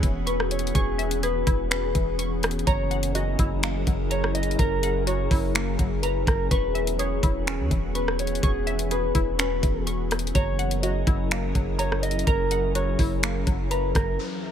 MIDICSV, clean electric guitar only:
0, 0, Header, 1, 2, 480
1, 0, Start_track
1, 0, Tempo, 480000
1, 751, Time_signature, 4, 2, 24, 8
1, 14516, End_track
2, 0, Start_track
2, 0, Title_t, "Clean electric guitar"
2, 0, Program_c, 0, 27
2, 0, Note_on_c, 0, 73, 90
2, 230, Note_off_c, 0, 73, 0
2, 270, Note_on_c, 0, 71, 79
2, 499, Note_off_c, 0, 71, 0
2, 513, Note_on_c, 0, 73, 80
2, 740, Note_off_c, 0, 73, 0
2, 744, Note_on_c, 0, 68, 102
2, 1198, Note_off_c, 0, 68, 0
2, 1234, Note_on_c, 0, 71, 85
2, 1684, Note_off_c, 0, 71, 0
2, 1707, Note_on_c, 0, 71, 92
2, 2160, Note_off_c, 0, 71, 0
2, 2668, Note_on_c, 0, 73, 109
2, 3120, Note_off_c, 0, 73, 0
2, 3149, Note_on_c, 0, 75, 80
2, 4070, Note_off_c, 0, 75, 0
2, 4116, Note_on_c, 0, 73, 86
2, 4341, Note_off_c, 0, 73, 0
2, 4347, Note_on_c, 0, 75, 85
2, 4577, Note_off_c, 0, 75, 0
2, 4590, Note_on_c, 0, 70, 97
2, 5042, Note_off_c, 0, 70, 0
2, 5071, Note_on_c, 0, 73, 85
2, 5522, Note_off_c, 0, 73, 0
2, 6026, Note_on_c, 0, 71, 75
2, 6256, Note_off_c, 0, 71, 0
2, 6265, Note_on_c, 0, 70, 73
2, 6496, Note_off_c, 0, 70, 0
2, 6509, Note_on_c, 0, 71, 103
2, 6961, Note_off_c, 0, 71, 0
2, 6988, Note_on_c, 0, 73, 87
2, 7910, Note_off_c, 0, 73, 0
2, 7952, Note_on_c, 0, 71, 78
2, 8179, Note_off_c, 0, 71, 0
2, 8196, Note_on_c, 0, 73, 77
2, 8421, Note_off_c, 0, 73, 0
2, 8424, Note_on_c, 0, 68, 101
2, 8878, Note_off_c, 0, 68, 0
2, 8917, Note_on_c, 0, 71, 85
2, 9365, Note_off_c, 0, 71, 0
2, 9389, Note_on_c, 0, 71, 89
2, 9841, Note_off_c, 0, 71, 0
2, 10348, Note_on_c, 0, 73, 108
2, 10801, Note_off_c, 0, 73, 0
2, 10831, Note_on_c, 0, 75, 78
2, 11751, Note_off_c, 0, 75, 0
2, 11794, Note_on_c, 0, 73, 85
2, 12020, Note_off_c, 0, 73, 0
2, 12027, Note_on_c, 0, 75, 90
2, 12257, Note_off_c, 0, 75, 0
2, 12268, Note_on_c, 0, 70, 98
2, 12721, Note_off_c, 0, 70, 0
2, 12754, Note_on_c, 0, 73, 81
2, 13204, Note_off_c, 0, 73, 0
2, 13708, Note_on_c, 0, 71, 77
2, 13937, Note_off_c, 0, 71, 0
2, 13946, Note_on_c, 0, 70, 76
2, 14176, Note_off_c, 0, 70, 0
2, 14516, End_track
0, 0, End_of_file